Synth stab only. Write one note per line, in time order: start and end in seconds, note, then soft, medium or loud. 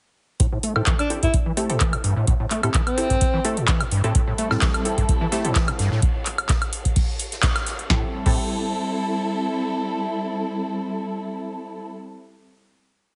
0.76 0.89 C4 medium
0.76 0.89 E4 medium
0.76 0.89 G4 medium
0.76 0.89 A4 medium
1.10 1.19 C4 medium
1.10 1.19 E4 medium
1.10 1.19 G4 medium
1.10 1.19 A4 medium
1.57 1.66 C4 medium
1.57 1.66 E4 medium
1.57 1.66 G4 medium
1.57 1.66 A4 medium
1.70 1.83 C4 medium
1.70 1.83 E4 medium
1.70 1.83 G4 medium
1.70 1.83 A4 medium
2.63 2.71 C4 medium
2.63 2.71 E4 medium
2.63 2.71 G4 medium
2.63 2.71 A4 loud
2.98 3.07 C4 medium
2.98 3.07 E4 medium
2.98 3.07 G4 medium
2.98 3.07 A4 medium
3.44 3.59 C4 medium
3.44 3.59 E4 medium
3.44 3.59 G4 medium
3.44 3.59 A4 loud
4.04 4.12 C4 medium
4.04 4.12 E4 medium
4.04 4.12 G4 medium
4.04 4.12 A4 loud
4.51 4.64 C4 medium
4.51 4.64 E4 medium
4.51 4.64 G4 medium
4.51 4.64 A4 medium
4.85 4.94 C4 medium
4.85 4.94 E4 medium
4.85 4.94 G4 medium
4.85 4.94 A4 medium
5.32 5.41 C4 medium
5.32 5.41 E4 medium
5.32 5.41 G4 medium
5.32 5.41 A4 medium
5.44 5.58 C4 medium
5.44 5.58 E4 medium
5.44 5.58 G4 medium
5.44 5.58 A4 medium
7.90 8.04 C4 medium
7.90 8.04 E4 medium
7.90 8.04 G4 medium
7.90 8.04 A4 medium
8.26 12.27 C4 medium
8.26 12.27 E4 medium
8.26 12.27 G4 medium
8.26 12.27 A4 medium